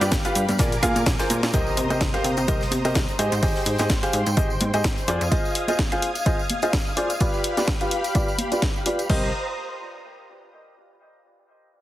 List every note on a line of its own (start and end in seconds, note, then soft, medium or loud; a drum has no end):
0.00 0.13 G2 loud
0.00 0.11 F4 medium
0.00 0.58 G4 medium
0.00 0.11 G4 medium
0.00 0.11 B4 medium
0.00 0.11 D5 medium
0.00 0.56 F5 medium
0.00 0.58 B5 medium
0.00 snare soft
0.00 closed hi-hat medium
0.00 tambourine medium
0.00 cabasa soft
0.00 shaker medium
0.11 0.23 G1 loud
0.11 kick loud
0.11 snare loud
0.11 closed hi-hat medium
0.11 tambourine medium
0.11 high conga medium
0.11 cabasa soft
0.11 shaker loud
0.25 0.41 F4 medium
0.25 0.41 G4 medium
0.25 0.41 B4 medium
0.25 0.41 F5 loud
0.25 closed hi-hat soft
0.25 tambourine soft
0.25 cabasa soft
0.35 0.46 G2 medium
0.35 open hi-hat medium
0.35 cabasa medium
0.35 shaker medium
0.48 0.57 G2 medium
0.48 closed hi-hat medium
0.48 tambourine medium
0.48 high conga medium
0.48 cabasa soft
0.59 0.79 A#1 loud
0.59 0.71 F4 medium
0.59 0.71 G#4 medium
0.59 1.53 A#4 medium
0.59 0.71 A#4 medium
0.59 0.71 D5 loud
0.59 1.53 G#5 medium
0.59 1.53 D6 medium
0.59 kick loud
0.59 snare loud
0.59 closed hi-hat medium
0.59 tambourine medium
0.59 cabasa soft
0.59 shaker medium
0.72 snare soft
0.72 closed hi-hat soft
0.72 tambourine soft
0.72 cabasa soft
0.83 0.94 A#2 medium
0.83 1.00 F4 loud
0.83 1.00 G#4 medium
0.83 1.00 A#4 medium
0.83 1.00 F5 loud
0.83 kick medium
0.83 open hi-hat loud
0.83 cabasa medium
0.83 shaker medium
0.95 1.04 A#2 medium
0.95 closed hi-hat medium
0.95 tambourine medium
0.95 high conga medium
0.95 cabasa soft
1.06 1.17 A#1 loud
1.06 kick loud
1.06 snare loud
1.06 closed hi-hat medium
1.06 tambourine medium
1.06 cabasa soft
1.06 shaker medium
1.19 1.51 F4 medium
1.19 1.51 G#4 medium
1.19 1.51 A#4 medium
1.19 1.51 C5 medium
1.19 snare loud
1.19 closed hi-hat soft
1.19 tambourine soft
1.19 shaker medium
1.30 1.41 A#2 loud
1.30 open hi-hat medium
1.30 high conga loud
1.30 cabasa medium
1.30 shaker medium
1.43 1.52 A#2 medium
1.43 snare soft
1.43 snare medium
1.43 closed hi-hat medium
1.43 tambourine medium
1.43 cabasa soft
1.53 1.65 C2 loud
1.53 1.87 G4 medium
1.53 1.87 A#4 medium
1.53 3.17 C5 medium
1.53 1.87 C5 medium
1.53 1.87 D#5 medium
1.53 3.17 A#5 medium
1.53 3.17 D#6 medium
1.53 kick loud
1.53 closed hi-hat medium
1.53 tambourine medium
1.53 impact medium
1.53 shaker medium
1.67 tambourine soft
1.77 1.88 C3 medium
1.77 open hi-hat loud
1.77 shaker medium
1.90 2.02 C3 loud
1.90 2.00 G4 medium
1.90 2.00 A#4 medium
1.90 2.00 C5 medium
1.90 2.00 D#5 medium
1.90 closed hi-hat medium
1.90 tambourine medium
1.90 high conga medium
2.01 2.12 C2 loud
2.01 kick loud
2.01 snare loud
2.01 closed hi-hat medium
2.01 tambourine medium
2.01 high conga medium
2.01 shaker medium
2.14 2.30 G4 medium
2.14 2.30 A#4 medium
2.14 2.30 C5 medium
2.14 2.30 F5 medium
2.14 snare soft
2.14 closed hi-hat soft
2.14 tambourine soft
2.24 2.35 C3 medium
2.24 open hi-hat medium
2.24 shaker medium
2.37 2.46 C3 medium
2.37 closed hi-hat medium
2.37 tambourine medium
2.48 2.68 C2 loud
2.48 2.60 G4 medium
2.48 2.60 A#4 medium
2.48 2.60 C5 medium
2.48 2.60 D#5 loud
2.48 kick loud
2.48 closed hi-hat medium
2.48 tambourine medium
2.48 shaker medium
2.61 snare medium
2.61 tambourine soft
2.71 2.83 C3 medium
2.71 snare medium
2.71 open hi-hat loud
2.71 high conga loud
2.71 shaker medium
2.85 2.94 C3 medium
2.85 2.94 G4 medium
2.85 2.94 A#4 medium
2.85 2.94 C5 medium
2.85 2.94 D#5 medium
2.85 snare soft
2.85 closed hi-hat medium
2.85 tambourine medium
2.95 3.06 C2 medium
2.95 kick loud
2.95 snare loud
2.95 closed hi-hat medium
2.95 tambourine medium
2.95 shaker medium
3.08 closed hi-hat soft
3.08 tambourine soft
3.19 3.30 G#2 loud
3.19 3.31 G4 medium
3.19 3.31 G#4 medium
3.19 3.31 C5 medium
3.19 5.06 C5 medium
3.19 3.31 D#5 loud
3.19 5.06 G5 medium
3.19 5.06 C6 medium
3.19 open hi-hat loud
3.19 shaker medium
3.32 3.41 G#2 loud
3.32 closed hi-hat soft
3.32 closed hi-hat medium
3.32 tambourine medium
3.42 3.53 G#1 loud
3.42 3.76 G4 medium
3.42 3.76 G#4 medium
3.42 3.76 C5 medium
3.42 3.76 D#5 medium
3.42 kick loud
3.42 closed hi-hat medium
3.42 open hi-hat medium
3.42 tambourine medium
3.55 snare medium
3.55 tambourine soft
3.66 3.77 G#2 medium
3.66 open hi-hat loud
3.66 shaker medium
3.78 3.91 G#2 loud
3.78 3.89 G4 medium
3.78 3.89 G#4 medium
3.78 3.89 C5 medium
3.78 3.89 D#5 medium
3.78 snare soft
3.78 closed hi-hat medium
3.78 closed hi-hat soft
3.78 tambourine medium
3.78 high conga medium
3.89 4.01 G#1 loud
3.89 kick loud
3.89 snare loud
3.89 closed hi-hat medium
3.89 tambourine medium
3.89 high conga medium
3.89 shaker medium
4.03 4.19 G4 medium
4.03 4.19 G#4 medium
4.03 4.19 C5 medium
4.03 4.19 F5 loud
4.03 closed hi-hat soft
4.03 tambourine soft
4.13 4.24 G#2 medium
4.13 open hi-hat medium
4.13 shaker medium
4.26 4.35 G#2 medium
4.26 closed hi-hat medium
4.26 tambourine medium
4.37 4.57 G#1 loud
4.37 4.49 G4 medium
4.37 4.49 G#4 medium
4.37 4.49 C5 medium
4.37 4.49 D#5 loud
4.37 kick loud
4.37 closed hi-hat medium
4.37 shaker medium
4.50 tambourine soft
4.60 4.72 G#2 medium
4.60 open hi-hat loud
4.60 high conga medium
4.60 shaker medium
4.74 4.82 G#2 medium
4.74 4.83 G4 medium
4.74 4.83 G#4 medium
4.74 4.83 C5 medium
4.74 4.83 D#5 medium
4.74 closed hi-hat medium
4.74 tambourine medium
4.84 4.95 G#1 medium
4.84 kick loud
4.84 snare loud
4.84 closed hi-hat medium
4.84 shaker medium
4.98 closed hi-hat soft
4.98 tambourine soft
5.08 5.19 F2 loud
5.08 5.20 F4 medium
5.08 5.20 G#4 medium
5.08 5.20 C5 medium
5.08 5.20 D5 loud
5.08 9.06 F5 medium
5.08 7.18 D#6 medium
5.08 7.18 G#6 medium
5.08 open hi-hat loud
5.08 shaker medium
5.21 5.30 F2 loud
5.21 closed hi-hat medium
5.21 tambourine medium
5.31 5.65 F4 medium
5.31 5.65 G#4 medium
5.31 5.65 C5 medium
5.31 5.65 D#5 medium
5.31 kick loud
5.31 closed hi-hat medium
5.31 tambourine medium
5.45 tambourine soft
5.55 open hi-hat loud
5.68 5.78 F4 medium
5.68 5.78 G#4 medium
5.68 5.78 C5 medium
5.68 5.78 D#5 medium
5.68 closed hi-hat medium
5.68 tambourine medium
5.68 high conga medium
5.79 kick loud
5.79 snare loud
5.79 closed hi-hat medium
5.79 tambourine medium
5.79 high conga medium
5.92 6.08 F4 medium
5.92 6.08 G#4 medium
5.92 6.08 C5 medium
5.92 6.08 F5 loud
5.92 closed hi-hat soft
5.92 tambourine soft
6.02 open hi-hat medium
6.15 closed hi-hat medium
6.15 tambourine medium
6.26 6.38 F4 medium
6.26 6.38 G#4 medium
6.26 6.38 C5 medium
6.26 6.38 D#5 loud
6.26 kick loud
6.26 closed hi-hat medium
6.39 tambourine soft
6.50 open hi-hat loud
6.50 high conga medium
6.62 6.72 F4 medium
6.62 6.72 G#4 medium
6.62 6.72 C5 medium
6.62 6.72 D#5 medium
6.62 closed hi-hat medium
6.62 tambourine medium
6.73 kick loud
6.73 snare loud
6.73 closed hi-hat medium
6.73 tambourine medium
6.87 tambourine soft
6.97 7.08 F4 medium
6.97 7.08 G#4 medium
6.97 7.08 C5 medium
6.97 7.08 D5 loud
6.97 open hi-hat loud
7.10 closed hi-hat medium
7.10 tambourine medium
7.20 7.54 F4 medium
7.20 9.08 G4 medium
7.20 7.54 G4 medium
7.20 7.54 B4 medium
7.20 7.54 D5 medium
7.20 9.08 B5 medium
7.20 kick loud
7.20 closed hi-hat medium
7.20 tambourine medium
7.33 tambourine soft
7.44 open hi-hat loud
7.57 7.67 F4 medium
7.57 7.67 G4 medium
7.57 7.67 B4 medium
7.57 7.67 D5 medium
7.57 snare soft
7.57 closed hi-hat medium
7.57 tambourine medium
7.57 high conga medium
7.68 kick loud
7.68 snare loud
7.68 closed hi-hat medium
7.81 7.97 F4 medium
7.81 7.97 G4 medium
7.81 7.97 B4 medium
7.81 7.97 F5 medium
7.81 closed hi-hat soft
7.81 tambourine soft
7.91 open hi-hat medium
8.04 closed hi-hat medium
8.04 tambourine medium
8.15 8.27 F4 medium
8.15 8.27 G4 medium
8.15 8.27 B4 medium
8.15 8.27 D5 loud
8.15 kick loud
8.15 closed hi-hat medium
8.15 tambourine medium
8.28 tambourine soft
8.38 open hi-hat loud
8.38 high conga medium
8.52 8.61 F4 medium
8.52 8.61 G4 medium
8.52 8.61 B4 medium
8.52 8.61 D5 medium
8.52 closed hi-hat medium
8.52 tambourine medium
8.62 kick loud
8.62 snare loud
8.62 closed hi-hat medium
8.62 tambourine medium
8.76 tambourine soft
8.86 8.98 F4 medium
8.86 8.98 G4 medium
8.86 8.98 B4 medium
8.86 8.97 D5 loud
8.86 open hi-hat loud
8.99 closed hi-hat soft
8.99 tambourine medium
9.09 9.32 C2 loud
9.09 9.28 G4 medium
9.09 9.28 A#4 medium
9.09 9.32 C5 medium
9.09 9.28 C5 medium
9.09 9.28 D#5 medium
9.09 9.31 A#5 medium
9.09 9.32 D#6 medium
9.09 kick loud
9.09 crash medium